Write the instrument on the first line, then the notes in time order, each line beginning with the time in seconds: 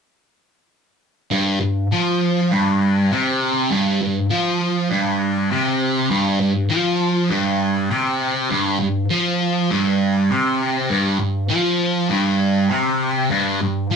distorted electric guitar
1.31 G2
1.61 G2
1.92 F3
2.51 G2
3.12 C3
3.70 G2
4.02 G2
4.30 F3
4.90 G2
5.51 C3
6.10 G2
6.40 G2
6.70 F3
7.30 G2
7.90 C3
8.51 G2
8.80 G2
9.10 F3
9.70 G2
10.30 C3
10.90 G2
11.20 G2
11.49 F3
12.09 G2
12.69 C3
13.30 G2
13.61 G2
13.91 F3